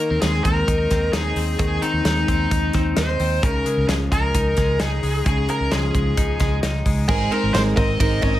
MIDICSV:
0, 0, Header, 1, 6, 480
1, 0, Start_track
1, 0, Tempo, 457317
1, 1674, Time_signature, 4, 2, 24, 8
1, 8815, End_track
2, 0, Start_track
2, 0, Title_t, "Lead electric guitar"
2, 0, Program_c, 0, 29
2, 0, Note_on_c, 0, 70, 85
2, 220, Note_off_c, 0, 70, 0
2, 224, Note_on_c, 0, 68, 80
2, 458, Note_off_c, 0, 68, 0
2, 462, Note_on_c, 0, 70, 89
2, 1182, Note_off_c, 0, 70, 0
2, 1186, Note_on_c, 0, 68, 79
2, 1664, Note_off_c, 0, 68, 0
2, 1677, Note_on_c, 0, 68, 85
2, 1909, Note_on_c, 0, 63, 84
2, 1923, Note_off_c, 0, 68, 0
2, 2143, Note_off_c, 0, 63, 0
2, 2156, Note_on_c, 0, 63, 80
2, 3119, Note_on_c, 0, 72, 90
2, 3146, Note_off_c, 0, 63, 0
2, 3599, Note_on_c, 0, 70, 89
2, 3613, Note_off_c, 0, 72, 0
2, 4073, Note_off_c, 0, 70, 0
2, 4077, Note_on_c, 0, 68, 81
2, 4142, Note_off_c, 0, 68, 0
2, 4328, Note_on_c, 0, 70, 84
2, 5036, Note_off_c, 0, 70, 0
2, 5040, Note_on_c, 0, 68, 78
2, 5486, Note_off_c, 0, 68, 0
2, 5529, Note_on_c, 0, 68, 70
2, 5768, Note_off_c, 0, 68, 0
2, 5772, Note_on_c, 0, 70, 89
2, 6005, Note_off_c, 0, 70, 0
2, 6009, Note_on_c, 0, 68, 73
2, 6921, Note_off_c, 0, 68, 0
2, 7435, Note_on_c, 0, 68, 87
2, 7675, Note_on_c, 0, 70, 89
2, 7683, Note_off_c, 0, 68, 0
2, 7907, Note_off_c, 0, 70, 0
2, 7911, Note_on_c, 0, 72, 99
2, 7977, Note_off_c, 0, 72, 0
2, 8152, Note_on_c, 0, 75, 103
2, 8621, Note_off_c, 0, 75, 0
2, 8634, Note_on_c, 0, 75, 111
2, 8815, Note_off_c, 0, 75, 0
2, 8815, End_track
3, 0, Start_track
3, 0, Title_t, "Twelve-string acoustic guitar"
3, 0, Program_c, 1, 25
3, 7431, Note_on_c, 1, 56, 79
3, 7439, Note_on_c, 1, 60, 83
3, 7447, Note_on_c, 1, 63, 85
3, 7454, Note_on_c, 1, 70, 96
3, 7663, Note_off_c, 1, 70, 0
3, 7674, Note_off_c, 1, 56, 0
3, 7676, Note_on_c, 1, 70, 58
3, 7678, Note_off_c, 1, 60, 0
3, 7681, Note_off_c, 1, 63, 0
3, 7695, Note_on_c, 1, 63, 49
3, 7707, Note_on_c, 1, 60, 43
3, 7908, Note_off_c, 1, 60, 0
3, 7910, Note_on_c, 1, 56, 88
3, 7915, Note_off_c, 1, 63, 0
3, 7916, Note_off_c, 1, 70, 0
3, 7921, Note_on_c, 1, 60, 80
3, 7928, Note_on_c, 1, 63, 84
3, 7935, Note_on_c, 1, 70, 94
3, 8136, Note_off_c, 1, 70, 0
3, 8148, Note_on_c, 1, 70, 63
3, 8151, Note_off_c, 1, 63, 0
3, 8152, Note_off_c, 1, 56, 0
3, 8158, Note_off_c, 1, 60, 0
3, 8164, Note_on_c, 1, 63, 54
3, 8178, Note_on_c, 1, 60, 46
3, 8384, Note_off_c, 1, 60, 0
3, 8387, Note_on_c, 1, 56, 59
3, 8391, Note_off_c, 1, 70, 0
3, 8397, Note_on_c, 1, 60, 60
3, 8399, Note_off_c, 1, 63, 0
3, 8410, Note_on_c, 1, 63, 71
3, 8421, Note_on_c, 1, 70, 57
3, 8612, Note_off_c, 1, 70, 0
3, 8625, Note_on_c, 1, 70, 62
3, 8630, Note_off_c, 1, 56, 0
3, 8630, Note_off_c, 1, 63, 0
3, 8635, Note_off_c, 1, 60, 0
3, 8642, Note_on_c, 1, 63, 49
3, 8658, Note_on_c, 1, 60, 41
3, 8815, Note_off_c, 1, 60, 0
3, 8815, Note_off_c, 1, 63, 0
3, 8815, Note_off_c, 1, 70, 0
3, 8815, End_track
4, 0, Start_track
4, 0, Title_t, "Clean electric guitar"
4, 0, Program_c, 2, 27
4, 0, Note_on_c, 2, 51, 76
4, 0, Note_on_c, 2, 58, 54
4, 0, Note_on_c, 2, 63, 67
4, 109, Note_off_c, 2, 58, 0
4, 109, Note_on_c, 2, 60, 38
4, 230, Note_on_c, 2, 56, 53
4, 459, Note_off_c, 2, 60, 0
4, 472, Note_on_c, 2, 60, 54
4, 706, Note_off_c, 2, 63, 0
4, 710, Note_on_c, 2, 63, 61
4, 942, Note_off_c, 2, 60, 0
4, 954, Note_on_c, 2, 60, 51
4, 1191, Note_off_c, 2, 63, 0
4, 1195, Note_on_c, 2, 63, 66
4, 1424, Note_off_c, 2, 60, 0
4, 1436, Note_on_c, 2, 60, 51
4, 1669, Note_off_c, 2, 51, 0
4, 1674, Note_on_c, 2, 51, 73
4, 1902, Note_off_c, 2, 60, 0
4, 1914, Note_on_c, 2, 60, 58
4, 2151, Note_off_c, 2, 56, 0
4, 2155, Note_on_c, 2, 56, 53
4, 2385, Note_off_c, 2, 60, 0
4, 2398, Note_on_c, 2, 60, 60
4, 2633, Note_off_c, 2, 63, 0
4, 2637, Note_on_c, 2, 63, 62
4, 2871, Note_off_c, 2, 60, 0
4, 2884, Note_on_c, 2, 60, 56
4, 3116, Note_off_c, 2, 63, 0
4, 3121, Note_on_c, 2, 63, 64
4, 3350, Note_off_c, 2, 60, 0
4, 3363, Note_on_c, 2, 60, 60
4, 3596, Note_off_c, 2, 51, 0
4, 3600, Note_on_c, 2, 49, 73
4, 3648, Note_off_c, 2, 60, 0
4, 3838, Note_off_c, 2, 56, 0
4, 3838, Note_on_c, 2, 56, 62
4, 4080, Note_on_c, 2, 53, 53
4, 4112, Note_off_c, 2, 63, 0
4, 4317, Note_off_c, 2, 56, 0
4, 4321, Note_on_c, 2, 56, 59
4, 4561, Note_on_c, 2, 63, 69
4, 4796, Note_off_c, 2, 56, 0
4, 4800, Note_on_c, 2, 56, 58
4, 5031, Note_off_c, 2, 63, 0
4, 5035, Note_on_c, 2, 63, 65
4, 5276, Note_off_c, 2, 56, 0
4, 5280, Note_on_c, 2, 56, 62
4, 5506, Note_off_c, 2, 49, 0
4, 5518, Note_on_c, 2, 49, 72
4, 5754, Note_off_c, 2, 56, 0
4, 5758, Note_on_c, 2, 56, 59
4, 5982, Note_off_c, 2, 53, 0
4, 5995, Note_on_c, 2, 53, 59
4, 6235, Note_off_c, 2, 56, 0
4, 6239, Note_on_c, 2, 56, 53
4, 6476, Note_off_c, 2, 63, 0
4, 6480, Note_on_c, 2, 63, 60
4, 6712, Note_off_c, 2, 56, 0
4, 6716, Note_on_c, 2, 56, 56
4, 6954, Note_off_c, 2, 63, 0
4, 6958, Note_on_c, 2, 63, 61
4, 7192, Note_off_c, 2, 56, 0
4, 7196, Note_on_c, 2, 56, 55
4, 7431, Note_off_c, 2, 49, 0
4, 7436, Note_off_c, 2, 56, 0
4, 7436, Note_off_c, 2, 63, 0
4, 7436, Note_on_c, 2, 56, 84
4, 7440, Note_on_c, 2, 70, 72
4, 7483, Note_off_c, 2, 53, 0
4, 7677, Note_on_c, 2, 60, 61
4, 7912, Note_off_c, 2, 70, 0
4, 7916, Note_on_c, 2, 70, 75
4, 8143, Note_off_c, 2, 60, 0
4, 8156, Note_on_c, 2, 60, 60
4, 8390, Note_off_c, 2, 70, 0
4, 8395, Note_on_c, 2, 70, 77
4, 8638, Note_on_c, 2, 61, 64
4, 8756, Note_off_c, 2, 61, 0
4, 8756, Note_on_c, 2, 63, 56
4, 8815, Note_off_c, 2, 56, 0
4, 8815, Note_off_c, 2, 60, 0
4, 8815, Note_off_c, 2, 63, 0
4, 8815, Note_off_c, 2, 70, 0
4, 8815, End_track
5, 0, Start_track
5, 0, Title_t, "Fingered electric bass"
5, 0, Program_c, 3, 33
5, 110, Note_on_c, 3, 39, 90
5, 209, Note_off_c, 3, 39, 0
5, 232, Note_on_c, 3, 39, 81
5, 429, Note_off_c, 3, 39, 0
5, 470, Note_on_c, 3, 39, 84
5, 668, Note_off_c, 3, 39, 0
5, 713, Note_on_c, 3, 39, 83
5, 910, Note_off_c, 3, 39, 0
5, 958, Note_on_c, 3, 39, 85
5, 1153, Note_off_c, 3, 39, 0
5, 1184, Note_on_c, 3, 39, 97
5, 1385, Note_off_c, 3, 39, 0
5, 1425, Note_on_c, 3, 39, 99
5, 1625, Note_off_c, 3, 39, 0
5, 1672, Note_on_c, 3, 39, 104
5, 1870, Note_off_c, 3, 39, 0
5, 2027, Note_on_c, 3, 39, 77
5, 2129, Note_off_c, 3, 39, 0
5, 2151, Note_on_c, 3, 39, 88
5, 2350, Note_off_c, 3, 39, 0
5, 2395, Note_on_c, 3, 39, 86
5, 2592, Note_off_c, 3, 39, 0
5, 2638, Note_on_c, 3, 39, 94
5, 2834, Note_off_c, 3, 39, 0
5, 2880, Note_on_c, 3, 39, 84
5, 3076, Note_off_c, 3, 39, 0
5, 3117, Note_on_c, 3, 39, 99
5, 3314, Note_off_c, 3, 39, 0
5, 3356, Note_on_c, 3, 39, 100
5, 3553, Note_off_c, 3, 39, 0
5, 3600, Note_on_c, 3, 37, 83
5, 3796, Note_off_c, 3, 37, 0
5, 3958, Note_on_c, 3, 37, 87
5, 4057, Note_off_c, 3, 37, 0
5, 4076, Note_on_c, 3, 37, 88
5, 4274, Note_off_c, 3, 37, 0
5, 4321, Note_on_c, 3, 37, 93
5, 4517, Note_off_c, 3, 37, 0
5, 4560, Note_on_c, 3, 37, 99
5, 4757, Note_off_c, 3, 37, 0
5, 4802, Note_on_c, 3, 37, 87
5, 4998, Note_off_c, 3, 37, 0
5, 5044, Note_on_c, 3, 37, 100
5, 5239, Note_off_c, 3, 37, 0
5, 5279, Note_on_c, 3, 37, 85
5, 5476, Note_off_c, 3, 37, 0
5, 5520, Note_on_c, 3, 37, 88
5, 5717, Note_off_c, 3, 37, 0
5, 5881, Note_on_c, 3, 37, 89
5, 5979, Note_off_c, 3, 37, 0
5, 6001, Note_on_c, 3, 37, 83
5, 6197, Note_off_c, 3, 37, 0
5, 6241, Note_on_c, 3, 37, 69
5, 6437, Note_off_c, 3, 37, 0
5, 6482, Note_on_c, 3, 37, 83
5, 6678, Note_off_c, 3, 37, 0
5, 6721, Note_on_c, 3, 37, 88
5, 6917, Note_off_c, 3, 37, 0
5, 6958, Note_on_c, 3, 37, 102
5, 7155, Note_off_c, 3, 37, 0
5, 7199, Note_on_c, 3, 37, 89
5, 7395, Note_off_c, 3, 37, 0
5, 7437, Note_on_c, 3, 32, 105
5, 7634, Note_off_c, 3, 32, 0
5, 7800, Note_on_c, 3, 32, 84
5, 7897, Note_off_c, 3, 32, 0
5, 7917, Note_on_c, 3, 32, 92
5, 8113, Note_off_c, 3, 32, 0
5, 8158, Note_on_c, 3, 32, 98
5, 8353, Note_off_c, 3, 32, 0
5, 8400, Note_on_c, 3, 32, 90
5, 8594, Note_off_c, 3, 32, 0
5, 8640, Note_on_c, 3, 32, 94
5, 8815, Note_off_c, 3, 32, 0
5, 8815, End_track
6, 0, Start_track
6, 0, Title_t, "Drums"
6, 228, Note_on_c, 9, 42, 74
6, 230, Note_on_c, 9, 38, 88
6, 333, Note_off_c, 9, 42, 0
6, 335, Note_off_c, 9, 38, 0
6, 472, Note_on_c, 9, 36, 88
6, 472, Note_on_c, 9, 42, 61
6, 577, Note_off_c, 9, 36, 0
6, 577, Note_off_c, 9, 42, 0
6, 714, Note_on_c, 9, 36, 82
6, 716, Note_on_c, 9, 42, 91
6, 819, Note_off_c, 9, 36, 0
6, 821, Note_off_c, 9, 42, 0
6, 951, Note_on_c, 9, 42, 57
6, 956, Note_on_c, 9, 38, 32
6, 957, Note_on_c, 9, 36, 67
6, 1056, Note_off_c, 9, 42, 0
6, 1061, Note_off_c, 9, 38, 0
6, 1062, Note_off_c, 9, 36, 0
6, 1190, Note_on_c, 9, 38, 112
6, 1192, Note_on_c, 9, 42, 84
6, 1294, Note_off_c, 9, 38, 0
6, 1297, Note_off_c, 9, 42, 0
6, 1428, Note_on_c, 9, 46, 68
6, 1533, Note_off_c, 9, 46, 0
6, 1671, Note_on_c, 9, 42, 83
6, 1673, Note_on_c, 9, 36, 102
6, 1776, Note_off_c, 9, 42, 0
6, 1778, Note_off_c, 9, 36, 0
6, 1914, Note_on_c, 9, 42, 61
6, 2019, Note_off_c, 9, 42, 0
6, 2152, Note_on_c, 9, 42, 72
6, 2153, Note_on_c, 9, 38, 95
6, 2257, Note_off_c, 9, 42, 0
6, 2258, Note_off_c, 9, 38, 0
6, 2397, Note_on_c, 9, 36, 75
6, 2398, Note_on_c, 9, 42, 66
6, 2502, Note_off_c, 9, 36, 0
6, 2503, Note_off_c, 9, 42, 0
6, 2638, Note_on_c, 9, 36, 79
6, 2638, Note_on_c, 9, 42, 96
6, 2743, Note_off_c, 9, 36, 0
6, 2743, Note_off_c, 9, 42, 0
6, 2870, Note_on_c, 9, 42, 56
6, 2875, Note_on_c, 9, 38, 28
6, 2880, Note_on_c, 9, 36, 72
6, 2975, Note_off_c, 9, 42, 0
6, 2979, Note_off_c, 9, 38, 0
6, 2985, Note_off_c, 9, 36, 0
6, 3113, Note_on_c, 9, 38, 118
6, 3115, Note_on_c, 9, 42, 91
6, 3218, Note_off_c, 9, 38, 0
6, 3220, Note_off_c, 9, 42, 0
6, 3354, Note_on_c, 9, 46, 69
6, 3459, Note_off_c, 9, 46, 0
6, 3601, Note_on_c, 9, 36, 107
6, 3603, Note_on_c, 9, 42, 80
6, 3706, Note_off_c, 9, 36, 0
6, 3708, Note_off_c, 9, 42, 0
6, 3842, Note_on_c, 9, 42, 63
6, 3946, Note_off_c, 9, 42, 0
6, 4080, Note_on_c, 9, 42, 77
6, 4082, Note_on_c, 9, 38, 101
6, 4185, Note_off_c, 9, 42, 0
6, 4187, Note_off_c, 9, 38, 0
6, 4322, Note_on_c, 9, 36, 73
6, 4326, Note_on_c, 9, 42, 62
6, 4427, Note_off_c, 9, 36, 0
6, 4431, Note_off_c, 9, 42, 0
6, 4561, Note_on_c, 9, 42, 97
6, 4562, Note_on_c, 9, 36, 83
6, 4666, Note_off_c, 9, 42, 0
6, 4667, Note_off_c, 9, 36, 0
6, 4793, Note_on_c, 9, 42, 62
6, 4798, Note_on_c, 9, 38, 29
6, 4803, Note_on_c, 9, 36, 71
6, 4898, Note_off_c, 9, 42, 0
6, 4903, Note_off_c, 9, 38, 0
6, 4908, Note_off_c, 9, 36, 0
6, 5034, Note_on_c, 9, 38, 116
6, 5036, Note_on_c, 9, 42, 81
6, 5139, Note_off_c, 9, 38, 0
6, 5141, Note_off_c, 9, 42, 0
6, 5280, Note_on_c, 9, 46, 71
6, 5385, Note_off_c, 9, 46, 0
6, 5520, Note_on_c, 9, 42, 80
6, 5521, Note_on_c, 9, 36, 102
6, 5625, Note_off_c, 9, 42, 0
6, 5626, Note_off_c, 9, 36, 0
6, 5759, Note_on_c, 9, 42, 58
6, 5864, Note_off_c, 9, 42, 0
6, 5998, Note_on_c, 9, 42, 69
6, 6000, Note_on_c, 9, 38, 95
6, 6103, Note_off_c, 9, 42, 0
6, 6105, Note_off_c, 9, 38, 0
6, 6241, Note_on_c, 9, 36, 79
6, 6242, Note_on_c, 9, 42, 57
6, 6346, Note_off_c, 9, 36, 0
6, 6347, Note_off_c, 9, 42, 0
6, 6481, Note_on_c, 9, 42, 101
6, 6482, Note_on_c, 9, 36, 79
6, 6586, Note_off_c, 9, 42, 0
6, 6587, Note_off_c, 9, 36, 0
6, 6714, Note_on_c, 9, 42, 58
6, 6719, Note_on_c, 9, 38, 32
6, 6722, Note_on_c, 9, 36, 81
6, 6819, Note_off_c, 9, 42, 0
6, 6824, Note_off_c, 9, 38, 0
6, 6827, Note_off_c, 9, 36, 0
6, 6958, Note_on_c, 9, 38, 106
6, 6961, Note_on_c, 9, 42, 97
6, 7063, Note_off_c, 9, 38, 0
6, 7066, Note_off_c, 9, 42, 0
6, 7197, Note_on_c, 9, 46, 61
6, 7198, Note_on_c, 9, 36, 75
6, 7302, Note_off_c, 9, 46, 0
6, 7303, Note_off_c, 9, 36, 0
6, 7439, Note_on_c, 9, 36, 119
6, 7442, Note_on_c, 9, 49, 100
6, 7544, Note_off_c, 9, 36, 0
6, 7547, Note_off_c, 9, 49, 0
6, 7682, Note_on_c, 9, 51, 54
6, 7787, Note_off_c, 9, 51, 0
6, 7920, Note_on_c, 9, 51, 70
6, 7921, Note_on_c, 9, 38, 102
6, 8025, Note_off_c, 9, 51, 0
6, 8026, Note_off_c, 9, 38, 0
6, 8157, Note_on_c, 9, 36, 87
6, 8158, Note_on_c, 9, 51, 58
6, 8262, Note_off_c, 9, 36, 0
6, 8263, Note_off_c, 9, 51, 0
6, 8399, Note_on_c, 9, 36, 88
6, 8401, Note_on_c, 9, 51, 99
6, 8504, Note_off_c, 9, 36, 0
6, 8506, Note_off_c, 9, 51, 0
6, 8630, Note_on_c, 9, 51, 57
6, 8638, Note_on_c, 9, 36, 82
6, 8735, Note_off_c, 9, 51, 0
6, 8743, Note_off_c, 9, 36, 0
6, 8815, End_track
0, 0, End_of_file